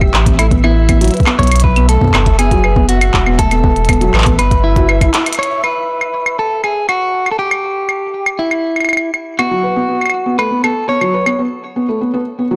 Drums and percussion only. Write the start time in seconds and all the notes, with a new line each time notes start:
0.01 kick, claves
0.14 clap
0.26 kick, closed hi-hat
0.39 closed hi-hat, claves
0.51 kick, closed hi-hat
0.64 claves
0.89 kick, closed hi-hat, claves
1.01 closed hi-hat
1.04 closed hi-hat
1.08 closed hi-hat
1.11 closed hi-hat
1.14 closed hi-hat
1.17 closed hi-hat
1.20 kick, closed hi-hat
1.26 clap, claves
1.39 kick, closed hi-hat
1.43 closed hi-hat
1.47 closed hi-hat
1.52 closed hi-hat, claves
1.56 closed hi-hat
1.60 closed hi-hat
1.64 kick
1.76 closed hi-hat, claves
1.89 closed hi-hat
2.01 kick
2.04 kick
2.08 kick
2.11 kick, clap, claves
2.14 kick
2.17 kick
2.20 kick
2.23 kick, closed hi-hat
2.26 kick
2.39 closed hi-hat, claves
2.51 kick, closed hi-hat
2.64 claves
2.76 kick
2.89 closed hi-hat
3.01 closed hi-hat, claves
3.14 kick, clap
3.26 claves
3.39 kick, closed hi-hat
3.51 closed hi-hat, claves
3.64 kick
3.76 closed hi-hat
3.85 closed hi-hat
3.89 kick, closed hi-hat, claves
3.93 closed hi-hat
4.01 closed hi-hat
4.14 clap, claves
4.18 clap
4.22 clap
4.26 kick, closed hi-hat
4.39 closed hi-hat, claves
4.51 kick, closed hi-hat
4.76 kick, closed hi-hat
4.89 claves
5.01 kick, closed hi-hat, claves
5.14 clap, closed hi-hat
5.26 closed hi-hat, claves
5.33 closed hi-hat
5.35 closed hi-hat, claves
5.39 claves
5.43 closed hi-hat, claves
5.64 claves
6.01 claves
6.26 claves
6.64 claves
6.89 claves
7.26 claves
7.51 claves
7.89 claves
8.26 claves
8.51 claves
8.76 claves
8.80 claves
8.85 claves
8.89 claves
8.93 claves
8.97 claves
9.14 claves
9.39 claves
10.01 claves
10.06 claves
10.10 claves
10.39 claves
10.64 claves
11.01 claves
11.26 claves